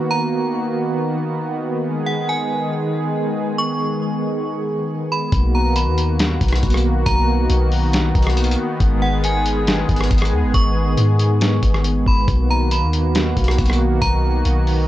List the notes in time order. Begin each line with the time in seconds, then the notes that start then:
Already playing: D#3 A#3 B3 F#4
0.11 A#5
1.85 G#3 G#4
2.06 F#5
2.29 G#5
3.58 C#6
5.12 B5
5.32 B1 D#3 A#3 B3 F#4, kick, closed hi-hat
5.55 A#5
5.76 B5, closed hi-hat
5.87 D#2
5.98 closed hi-hat
6.19 snare, closed hi-hat
6.41 B1, kick, closed hi-hat
6.48 closed hi-hat
6.53 cross-stick, closed hi-hat
6.63 B1, kick, closed hi-hat
6.70 closed hi-hat
6.74 cross-stick, closed hi-hat
7.06 B1 A#5, kick, closed hi-hat
7.50 B1, closed hi-hat
7.72 open hi-hat
7.93 snare, closed hi-hat
8.15 B1, kick, closed hi-hat
8.22 closed hi-hat
8.27 cross-stick, closed hi-hat
8.37 closed hi-hat
8.44 closed hi-hat
8.51 closed hi-hat
8.80 G#1 G#3 G#4, kick, closed hi-hat
9.02 F#5
9.24 G#5, closed hi-hat
9.46 closed hi-hat
9.67 snare, closed hi-hat
9.89 G#1, kick, closed hi-hat
9.96 closed hi-hat
10.01 cross-stick, closed hi-hat
10.11 G#1, kick, closed hi-hat
10.18 cross-stick, closed hi-hat
10.25 closed hi-hat
10.32 D#2
10.43 G#1
10.54 G#1 C#6, kick, closed hi-hat
10.97 G#2, closed hi-hat
11.19 closed hi-hat
11.41 snare, closed hi-hat
11.63 G#1, kick, closed hi-hat
11.74 cross-stick
11.84 closed hi-hat
12.06 G#1 B5, kick
12.28 B1 D#3 A#3 F#4, kick, closed hi-hat
12.51 A#5
12.71 B5, closed hi-hat
12.82 D#2
12.93 closed hi-hat
13.15 snare, closed hi-hat
13.37 B1, kick, closed hi-hat
13.44 closed hi-hat
13.48 cross-stick, closed hi-hat
13.58 B1, kick, closed hi-hat
13.66 closed hi-hat
13.70 cross-stick, closed hi-hat
14.02 B1 A#5, kick, closed hi-hat
14.45 B1, closed hi-hat
14.67 open hi-hat